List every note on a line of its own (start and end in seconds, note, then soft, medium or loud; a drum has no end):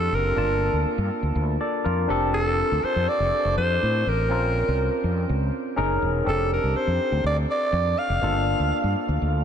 0.00 0.32 C4 medium
0.00 0.32 D4 medium
0.00 0.33 G4 medium
0.00 0.17 A4 medium
0.00 0.33 A4 medium
0.12 0.33 F#1 medium
0.12 0.87 A#4 medium
0.36 0.68 G1 loud
0.36 2.05 A#3 medium
0.36 2.05 D4 medium
0.36 1.58 F4 medium
0.36 1.58 A5 medium
0.73 0.84 D2 medium
0.86 muted fretless electric bass stroke soft
0.98 1.09 G2 medium
1.23 1.33 D2 medium
1.35 1.56 D2 medium
1.61 1.84 A4 medium
1.61 1.84 D5 medium
1.84 2.06 F2 medium
1.84 2.32 F4 medium
1.84 2.31 A#4 medium
2.08 2.61 F1 medium
2.08 4.01 C4 medium
2.08 4.01 D4 medium
2.08 4.01 G4 medium
2.08 4.02 A4 medium
2.34 2.86 A4 loud
2.72 2.81 D2 medium
2.84 3.10 C5 loud
2.84 muted fretless electric bass stroke soft
2.96 3.06 F2 medium
3.09 3.57 D5 loud
3.20 3.30 F1 medium
3.45 3.55 F1 medium
3.57 3.77 F2 medium
3.57 4.10 C5 loud
3.83 4.03 A2 medium
4.07 4.32 A1 medium
4.07 5.05 A#4 medium
4.29 4.62 A#1 medium
4.29 5.73 C4 medium
4.29 5.74 C#4 medium
4.29 5.74 F4 medium
4.29 5.75 A#4 medium
4.68 4.88 C2 medium
5.04 5.24 F2 medium
5.29 5.49 C#2 medium
5.76 5.98 F#1 medium
5.76 6.26 C#4 medium
5.76 6.26 D#4 medium
5.76 6.26 G#4 medium
5.76 6.26 A#4 medium
6.02 6.23 E1 medium
6.24 6.57 F1 medium
6.24 8.17 C4 medium
6.24 8.18 D4 medium
6.24 8.18 G4 medium
6.24 8.19 A4 medium
6.29 6.50 A4 medium
6.53 6.78 A#4 medium
6.63 6.73 C2 medium
6.75 7.25 C5 medium
6.75 muted fretless electric bass stroke soft
6.87 6.98 F2 medium
7.12 7.22 D2 medium
7.24 7.45 D2 medium
7.24 7.37 D5 loud
7.51 8.00 D5 loud
7.73 7.93 F2 loud
7.98 8.96 F5 medium
8.10 8.20 F1 medium
8.22 8.53 G1 medium
8.22 9.44 A#3 medium
8.22 9.44 D4 medium
8.22 9.44 F4 medium
8.22 9.44 A4 medium
8.60 8.70 D2 medium
8.72 muted fretless electric bass stroke soft
8.84 8.94 G2 medium
9.09 9.19 D2 medium
9.22 9.42 D2 medium